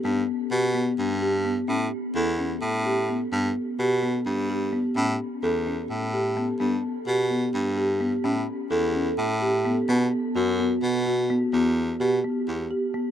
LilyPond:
<<
  \new Staff \with { instrumentName = "Marimba" } { \time 7/8 \key e \dorian \tempo 4 = 128 b4 g'8 b4 g'8 b8 | cis'4 a'8 cis'4 g'8 b8 | b4 g'8 b4 g'8 b8 | cis'4 a'8 cis'4 g'8 b8 |
b4 g'8 b4 g'8 b8 | cis'4 a'8 cis'4 g'8 b8 | b4 fis'8 b4 fis'8 b8 | b4 g'8 b4 g'8 b8 | }
  \new Staff \with { instrumentName = "Baritone saxophone" } { \clef bass \time 7/8 \key e \dorian g,8 r8 b,4 g,4. | a,8 r8 e,4 a,4. | g,8 r8 b,4 g,4. | a,8 r8 e,4 a,4. |
g,8 r8 b,4 g,4. | a,8 r8 e,4 a,4. | b,8 r8 fis,4 b,4. | e,4 b,8 r8 e,8 r4 | }
>>